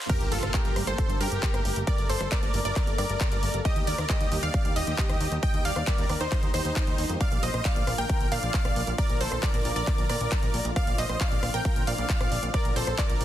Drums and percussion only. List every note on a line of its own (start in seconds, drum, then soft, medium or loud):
0.09 kick loud
0.09 cross-stick medium
0.09 closed hi-hat medium
0.09 crash loud
0.21 closed hi-hat medium
0.32 open hi-hat loud
0.43 cross-stick medium
0.43 closed hi-hat medium
0.54 kick loud
0.54 clap loud
0.54 closed hi-hat medium
0.65 closed hi-hat medium
0.76 cross-stick medium
0.76 open hi-hat medium
0.87 closed hi-hat medium
0.98 kick loud
0.98 closed hi-hat medium
1.10 closed hi-hat medium
1.21 open hi-hat loud
1.32 closed hi-hat medium
1.43 kick loud
1.43 clap loud
1.43 closed hi-hat medium
1.54 cross-stick medium
1.54 closed hi-hat medium
1.65 open hi-hat medium
1.76 closed hi-hat medium
1.87 kick loud
1.87 closed hi-hat medium
1.98 closed hi-hat medium
2.10 open hi-hat loud
2.21 cross-stick medium
2.21 closed hi-hat medium
2.32 kick loud
2.32 clap loud
2.32 closed hi-hat medium
2.43 closed hi-hat medium
2.54 open hi-hat loud
2.65 closed hi-hat medium
2.76 kick loud
2.76 clap medium
2.76 closed hi-hat medium
2.87 closed hi-hat medium
2.98 cross-stick medium
2.98 open hi-hat loud
3.10 closed hi-hat medium
3.21 kick loud
3.21 clap loud
3.21 closed hi-hat medium
3.32 closed hi-hat medium
3.43 open hi-hat medium
3.54 closed hi-hat medium
3.65 kick loud
3.65 cross-stick medium
3.65 closed hi-hat medium
3.76 closed hi-hat medium
3.87 open hi-hat loud
3.98 cross-stick medium
3.98 closed hi-hat medium
4.10 kick loud
4.10 clap loud
4.10 closed hi-hat medium
4.21 closed hi-hat medium
4.32 open hi-hat loud
4.43 closed hi-hat medium
4.54 kick loud
4.54 closed hi-hat medium
4.65 closed hi-hat medium
4.76 open hi-hat loud
4.87 closed hi-hat medium
4.98 kick loud
4.98 clap loud
4.98 closed hi-hat medium
5.09 cross-stick medium
5.09 closed hi-hat medium
5.21 open hi-hat medium
5.32 closed hi-hat medium
5.43 kick loud
5.43 closed hi-hat medium
5.54 closed hi-hat medium
5.65 open hi-hat loud
5.76 cross-stick medium
5.76 closed hi-hat medium
5.87 kick loud
5.87 clap loud
5.87 closed hi-hat medium
5.98 closed hi-hat soft
6.09 cross-stick medium
6.09 open hi-hat medium
6.21 closed hi-hat medium
6.32 kick loud
6.32 clap medium
6.32 closed hi-hat medium
6.43 closed hi-hat soft
6.54 cross-stick medium
6.54 open hi-hat loud
6.65 closed hi-hat medium
6.76 kick loud
6.76 clap loud
6.76 closed hi-hat medium
6.87 closed hi-hat medium
6.98 open hi-hat medium
7.09 closed hi-hat soft
7.21 kick loud
7.21 cross-stick medium
7.21 closed hi-hat medium
7.32 closed hi-hat medium
7.43 open hi-hat loud
7.54 cross-stick medium
7.54 closed hi-hat medium
7.65 kick loud
7.65 clap loud
7.65 closed hi-hat medium
7.76 closed hi-hat medium
7.87 cross-stick medium
7.87 open hi-hat medium
7.98 closed hi-hat medium
8.09 kick loud
8.09 closed hi-hat medium
8.21 closed hi-hat medium
8.32 open hi-hat loud
8.43 closed hi-hat medium
8.54 kick loud
8.54 clap loud
8.54 closed hi-hat medium
8.65 cross-stick medium
8.65 closed hi-hat medium
8.76 open hi-hat medium
8.87 closed hi-hat medium
8.98 kick loud
8.98 closed hi-hat medium
9.10 closed hi-hat medium
9.21 open hi-hat loud
9.32 cross-stick medium
9.32 closed hi-hat medium
9.43 kick loud
9.43 clap loud
9.43 closed hi-hat medium
9.54 closed hi-hat medium
9.65 open hi-hat medium
9.76 closed hi-hat medium
9.87 kick loud
9.87 clap medium
9.87 closed hi-hat medium
9.98 closed hi-hat medium
10.09 cross-stick medium
10.09 open hi-hat loud
10.21 closed hi-hat medium
10.32 kick loud
10.32 clap loud
10.32 closed hi-hat medium
10.43 closed hi-hat medium
10.54 open hi-hat medium
10.65 closed hi-hat medium
10.76 kick loud
10.76 cross-stick medium
10.76 closed hi-hat medium
10.87 closed hi-hat medium
10.98 open hi-hat loud
11.09 cross-stick medium
11.09 closed hi-hat medium
11.21 kick loud
11.21 clap loud
11.21 closed hi-hat medium
11.32 closed hi-hat medium
11.43 cross-stick medium
11.43 open hi-hat medium
11.54 closed hi-hat medium
11.65 kick loud
11.65 closed hi-hat medium
11.76 closed hi-hat medium
11.87 open hi-hat loud
11.98 closed hi-hat medium
12.10 kick loud
12.10 clap loud
12.10 closed hi-hat medium
12.21 cross-stick medium
12.21 closed hi-hat medium
12.32 open hi-hat medium
12.43 closed hi-hat medium
12.54 kick loud
12.54 cross-stick medium
12.54 closed hi-hat medium
12.65 closed hi-hat medium
12.76 open hi-hat loud
12.87 cross-stick medium
12.87 closed hi-hat medium
12.98 kick loud
12.98 clap loud
12.98 closed hi-hat medium
13.10 closed hi-hat medium
13.21 open hi-hat medium